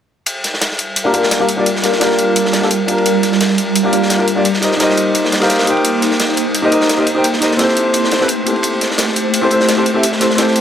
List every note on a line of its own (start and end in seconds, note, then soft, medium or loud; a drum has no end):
0.26 4.41 G3 medium
0.26 4.41 F4 medium
0.26 4.41 A#4 medium
0.26 closed hi-hat medium
0.26 ride medium
0.44 snare soft
0.44 closed hi-hat medium
0.44 ride medium
0.54 snare soft
0.61 snare loud
0.61 closed hi-hat medium
0.61 ride medium
0.72 snare soft
0.79 closed hi-hat medium
0.79 ride medium
0.96 closed hi-hat medium
0.96 ride medium
1.04 1.11 A#3 medium
1.04 1.12 D4 medium
1.04 1.12 F4 medium
1.04 1.12 G4 medium
1.04 1.13 A#4 loud
1.12 1.37 A#3 medium
1.12 1.38 D4 medium
1.12 1.38 F4 medium
1.12 1.39 G4 medium
1.12 1.39 A#4 medium
1.12 closed hi-hat medium
1.12 ride medium
1.23 snare medium
1.31 snare loud
1.31 closed hi-hat medium
1.31 ride medium
1.39 1.45 A#3 medium
1.39 1.45 D4 medium
1.39 1.45 F4 medium
1.39 1.46 G4 medium
1.39 1.46 A#4 medium
1.49 closed hi-hat medium
1.49 ride medium
1.56 1.65 A#3 medium
1.56 1.65 D4 medium
1.56 1.65 F4 medium
1.56 1.66 G4 medium
1.56 1.66 D5 medium
1.66 closed hi-hat medium
1.66 ride medium
1.76 snare soft
1.82 1.91 A#3 medium
1.82 1.92 D4 medium
1.82 1.92 F4 medium
1.82 1.92 G4 medium
1.82 1.93 A#4 medium
1.82 snare soft
1.82 closed hi-hat medium
1.82 ride medium
1.92 snare soft
1.98 2.59 A#3 medium
1.98 2.60 D4 medium
1.98 2.60 F4 medium
1.98 snare loud
1.98 closed hi-hat medium
1.98 ride medium
2.03 2.61 G4 medium
2.03 2.62 A#4 loud
2.10 snare soft
2.19 closed hi-hat medium
2.19 ride medium
2.36 closed hi-hat medium
2.36 ride medium
2.45 snare soft
2.53 snare medium
2.53 closed hi-hat medium
2.53 ride medium
2.61 2.67 A#3 medium
2.61 2.67 D4 medium
2.61 2.67 F4 medium
2.61 2.68 G4 medium
2.61 2.68 A4 medium
2.61 snare soft
2.71 closed hi-hat medium
2.71 ride medium
2.86 3.81 A#3 medium
2.86 3.82 D4 medium
2.86 3.83 F4 medium
2.86 closed hi-hat medium
2.86 ride medium
2.90 3.83 G4 medium
2.90 3.84 A#4 medium
2.98 ride soft
3.06 closed hi-hat medium
3.06 ride medium
3.23 snare soft
3.23 closed hi-hat medium
3.23 ride medium
3.32 snare soft
3.41 snare loud
3.41 closed hi-hat medium
3.41 ride medium
3.49 snare soft
3.58 closed hi-hat medium
3.58 ride medium
3.76 closed hi-hat medium
3.76 ride medium
3.83 3.90 A#3 medium
3.83 3.91 D4 medium
3.83 3.91 F4 medium
3.83 3.91 G4 medium
3.83 3.92 A#4 loud
3.92 4.16 A#3 medium
3.92 4.17 D4 medium
3.92 4.17 F4 medium
3.92 4.18 G4 medium
3.92 4.18 A#4 medium
3.92 closed hi-hat medium
3.92 ride medium
4.03 snare medium
4.10 snare loud
4.10 closed hi-hat medium
4.10 ride medium
4.18 4.23 A#3 medium
4.18 4.24 D4 medium
4.18 4.24 F4 medium
4.18 4.24 G4 medium
4.18 4.25 A#4 loud
4.28 closed hi-hat medium
4.28 ride medium
4.35 4.43 A#3 medium
4.35 4.44 D4 medium
4.35 4.44 F4 medium
4.35 4.44 G4 medium
4.35 4.45 D5 medium
4.45 7.73 A#3 medium
4.45 7.73 D#4 medium
4.45 10.61 C5 medium
4.45 closed hi-hat medium
4.45 ride medium
4.54 snare soft
4.61 4.70 D#4 medium
4.61 4.71 G4 medium
4.61 4.71 A#4 medium
4.61 4.71 C5 medium
4.61 4.72 D#5 medium
4.61 snare medium
4.61 closed hi-hat medium
4.61 ride medium
4.72 snare medium
4.77 5.38 D#4 medium
4.77 5.39 G4 medium
4.77 5.39 A#4 medium
4.77 snare loud
4.77 closed hi-hat medium
4.77 ride medium
4.81 5.40 C5 medium
4.81 5.41 D#5 loud
4.90 snare medium
4.97 closed hi-hat medium
4.97 ride medium
5.15 closed hi-hat medium
5.15 ride medium
5.25 snare medium
5.32 snare loud
5.32 closed hi-hat medium
5.32 ride medium
5.40 5.63 D#4 medium
5.40 5.64 G4 medium
5.40 5.65 A#4 medium
5.40 5.66 C5 medium
5.40 5.66 F5 medium
5.40 snare loud
5.40 ride medium
5.50 snare loud
5.50 closed hi-hat medium
5.50 ride medium
5.59 snare medium
5.59 ride medium
5.64 6.60 D#4 medium
5.64 6.61 G4 medium
5.64 6.62 A#4 medium
5.64 closed hi-hat medium
5.64 ride medium
5.69 6.62 C5 medium
5.69 6.63 G5 medium
5.77 ride soft
5.85 closed hi-hat medium
5.85 ride medium
6.02 snare soft
6.02 closed hi-hat medium
6.02 ride medium
6.11 snare soft
6.20 snare loud
6.20 closed hi-hat medium
6.20 ride medium
6.28 snare soft
6.37 closed hi-hat medium
6.37 ride medium
6.55 closed hi-hat medium
6.55 ride medium
6.62 6.69 D#4 medium
6.62 6.70 G4 medium
6.62 6.70 A#4 medium
6.62 6.71 C5 medium
6.62 6.71 D#5 medium
6.71 6.96 D#4 medium
6.71 6.96 G4 medium
6.71 6.96 A#4 medium
6.71 6.97 C5 medium
6.71 6.97 D#5 medium
6.71 closed hi-hat medium
6.71 ride medium
6.81 snare medium
6.89 snare loud
6.89 closed hi-hat medium
6.89 ride medium
6.97 7.03 D#4 medium
6.97 7.03 G4 medium
6.97 7.04 A#4 medium
6.97 7.04 C5 medium
6.97 7.04 D#5 loud
7.07 closed hi-hat medium
7.07 ride medium
7.15 7.23 D#4 medium
7.15 7.23 G4 medium
7.15 7.24 A#4 medium
7.15 7.24 C5 medium
7.15 7.24 G5 medium
7.24 closed hi-hat medium
7.24 ride medium
7.33 snare soft
7.40 7.49 D#4 medium
7.40 7.50 G4 medium
7.40 7.50 A#4 medium
7.40 7.51 C5 medium
7.40 7.51 D#5 medium
7.40 snare medium
7.40 closed hi-hat medium
7.40 ride medium
7.51 snare soft
7.56 8.17 C4 medium
7.56 8.18 E4 medium
7.56 8.19 G4 medium
7.56 snare loud
7.56 closed hi-hat medium
7.56 ride medium
7.61 8.19 A4 medium
7.61 8.20 C5 loud
7.68 snare medium
7.76 10.61 A3 medium
7.76 10.61 G4 medium
7.76 closed hi-hat medium
7.76 ride medium
7.94 closed hi-hat medium
7.94 ride medium
8.04 snare medium
8.12 snare medium
8.12 closed hi-hat medium
8.12 ride medium
8.19 8.25 C4 medium
8.19 8.25 E4 medium
8.19 8.25 G4 medium
8.19 8.26 A4 medium
8.19 8.26 B4 medium
8.19 snare soft
8.28 closed hi-hat medium
8.28 ride medium
8.44 9.39 C4 medium
8.44 9.40 E4 medium
8.44 9.41 G4 medium
8.44 closed hi-hat medium
8.44 ride medium
8.48 9.41 A4 medium
8.48 9.42 C5 medium
8.56 ride soft
8.63 closed hi-hat medium
8.63 ride medium
8.81 snare soft
8.81 closed hi-hat medium
8.81 ride medium
8.91 snare soft
8.98 snare loud
8.98 closed hi-hat medium
8.98 ride medium
9.07 snare soft
9.16 closed hi-hat medium
9.16 ride medium
9.34 closed hi-hat medium
9.34 ride medium
9.41 9.48 C4 medium
9.41 9.49 E4 medium
9.41 9.49 G4 medium
9.41 9.50 A4 medium
9.41 9.50 C5 loud
9.50 9.74 C4 medium
9.50 9.75 E4 medium
9.50 9.76 G4 medium
9.50 9.76 A4 medium
9.50 9.76 C5 medium
9.50 closed hi-hat medium
9.50 ride medium
9.60 snare medium
9.69 snare loud
9.69 closed hi-hat medium
9.69 ride medium
9.76 9.82 C4 medium
9.76 9.82 E4 medium
9.76 9.82 G4 medium
9.76 9.83 A4 medium
9.76 9.83 C5 loud
9.86 closed hi-hat medium
9.86 ride medium
9.94 10.02 C4 medium
9.94 10.02 E4 medium
9.94 10.03 G4 medium
9.94 10.03 A4 medium
9.94 10.03 E5 medium
10.03 closed hi-hat medium
10.03 ride medium
10.12 snare soft
10.19 10.28 C4 medium
10.19 10.29 E4 medium
10.19 10.29 G4 medium
10.19 10.30 A4 medium
10.19 10.30 C5 medium
10.19 snare medium
10.19 closed hi-hat medium
10.19 ride medium
10.30 snare soft
10.35 10.61 C4 medium
10.35 10.61 E4 medium
10.35 10.61 G4 medium
10.35 snare loud
10.35 closed hi-hat medium
10.35 ride medium
10.40 10.61 A4 medium
10.40 10.61 C5 loud
10.48 snare medium
10.55 closed hi-hat medium
10.55 ride medium